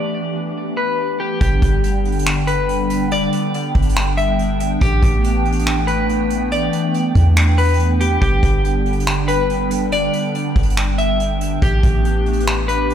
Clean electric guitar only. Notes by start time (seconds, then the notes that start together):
Already playing: D5
0.77 B4
1.20 G4
1.41 G4
2.47 B4
3.12 D5
4.17 E5
4.82 G4
5.87 B4
6.52 D5
7.58 B4
8.01 G4
8.22 G4
9.28 B4
9.92 D5
10.98 E5
11.63 G4
12.68 B4